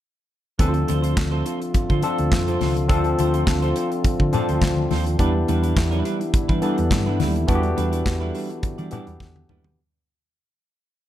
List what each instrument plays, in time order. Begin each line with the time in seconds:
0.59 fingered electric bass D2, french horn section D3 A3 C4 F4, tine electric piano F3 C4 D4 A4, clean electric guitar C4 F4 A4 C5, kick, closed hi-hat
0.74 muted clean electric guitar stroke, closed hi-hat
0.87 fingered electric bass D2, clean electric guitar C4 F4 A4 C5, closed hi-hat, muted conga
1.02 clean electric guitar C4 F4 A4 C5, closed hi-hat
1.17 fingered electric bass D2, muted clean electric guitar stroke, kick, snare, clap, high conga
1.31 clean electric guitar C4 F4 A4 C5
1.45 clean electric guitar C4 F4 A4 C5, closed hi-hat
1.60 muted clean electric guitar stroke, closed hi-hat
1.74 muted clean electric guitar stroke, muted fingered electric bass stroke, kick, closed hi-hat, muted conga
1.90 fingered electric bass D3, clean electric guitar C4 F4 A4 C5, kick, closed hi-hat
2.02 tine electric piano F3 C4 D4 A4, clean electric guitar C4 F4 A4 C5, closed hi-hat
2.18 fingered electric bass D2, muted clean electric guitar stroke, closed hi-hat
2.32 fingered electric bass F2, muted clean electric guitar stroke, kick, snare, clap, high conga
2.48 clean electric guitar C4 F4 A4 C5, closed hi-hat, high conga
2.61 fingered electric bass C#2, clean electric guitar C4 F4 A4 C5, snare, open hi-hat, high conga
2.76 muted clean electric guitar stroke, closed hi-hat
2.88 fingered electric bass D2, tine electric piano F3 C4 D4 A4, clean electric guitar C4 F4 A4 C5, kick, closed hi-hat
3.04 muted clean electric guitar stroke, closed hi-hat
3.18 fingered electric bass D2, clean electric guitar C4 F4 A4 C5, closed hi-hat, muted conga
3.34 clean electric guitar C4 F4 A4 C5, closed hi-hat
3.47 fingered electric bass D2, kick, snare, clap, high conga
3.62 clean electric guitar C4 F4 A4 C5, closed hi-hat
3.75 clean electric guitar C4 F4 A4 C5, closed hi-hat
3.91 muted clean electric guitar stroke, closed hi-hat
4.04 muted clean electric guitar stroke, muted fingered electric bass stroke, kick, closed hi-hat, muted conga
4.20 fingered electric bass D3, muted clean electric guitar stroke, kick
4.32 tine electric piano F3 C4 D4 C5, clean electric guitar C4 F4 A4 D5, closed hi-hat, low conga
4.49 fingered electric bass D2, clean electric guitar C4 F4 A4 C5, closed hi-hat
4.62 fingered electric bass D2, kick, snare, clap, high conga
4.77 muted clean electric guitar stroke, high conga
4.91 fingered electric bass D#2, clean electric guitar C4 F4 A4 C5, snare, open hi-hat, high conga
5.06 muted clean electric guitar stroke, closed hi-hat
5.18 fingered electric bass E2, french horn section D3 G3 B3 E4, tine electric piano E3 B3 D4 G4, clean electric guitar G3 D4 E4 B4, kick, closed hi-hat
5.35 muted clean electric guitar stroke
5.48 fingered electric bass E2, clean electric guitar G3 D4 E4 B4, closed hi-hat, muted conga
5.62 clean electric guitar G3 D4 E4 B4, closed hi-hat
5.76 fingered electric bass E2, muted clean electric guitar stroke, kick, snare, clap, high conga
5.91 clean electric guitar G3 D4 E4 B4, closed hi-hat
6.04 clean electric guitar G3 D4 E4 B4, closed hi-hat
6.20 muted clean electric guitar stroke, closed hi-hat
6.33 muted clean electric guitar stroke, muted fingered electric bass stroke, kick, closed hi-hat, muted conga
6.48 fingered electric bass E3, clean electric guitar G3 D4 E4 B4, kick, closed hi-hat
6.61 tine electric piano E3 B3 D4 A4, clean electric guitar G3 D4 E4 B4, closed hi-hat
6.78 fingered electric bass E2, muted clean electric guitar stroke, closed hi-hat
6.91 fingered electric bass G2, muted clean electric guitar stroke, kick, snare, clap, high conga
7.06 clean electric guitar G3 D4 E4 B4, high conga
7.19 fingered electric bass D#2, clean electric guitar G3 D4 E4 B4, snare, open hi-hat, high conga
7.35 muted clean electric guitar stroke, closed hi-hat
7.47 fingered electric bass E2, tine electric piano E3 B3 D4 F#4, clean electric guitar G3 D4 E4 B4, french horn section A3, kick, closed hi-hat, muted conga
7.55 tine electric piano G4
7.62 muted clean electric guitar stroke, closed hi-hat
7.76 fingered electric bass E2, clean electric guitar G3 D4 E4 B4, closed hi-hat, muted conga
7.92 clean electric guitar G3 D4 E4 B4, closed hi-hat
8.06 fingered electric bass E2, kick, snare, clap, high conga
8.20 clean electric guitar G3 D4 E4 B4
8.34 clean electric guitar G3 D4 E4 B4, open hi-hat
8.50 muted clean electric guitar stroke, closed hi-hat
8.63 muted clean electric guitar stroke, muted fingered electric bass stroke, kick, closed hi-hat, muted conga
8.78 fingered electric bass E3, clean electric guitar G3 D4 E4 D5, closed hi-hat
8.91 tine electric piano E3 B3 D4 G4, clean electric guitar G3 D4 E4 D5, closed hi-hat, low conga
9.07 fingered electric bass E2, muted clean electric guitar stroke, closed hi-hat
9.20 fingered electric bass E2, kick, snare, high conga
9.36 muted clean electric guitar stroke, high tom, high conga
9.49 fingered electric bass D#2, clean electric guitar G3 D4 E4 B4, mid tom, high conga
9.64 muted clean electric guitar stroke, floor tom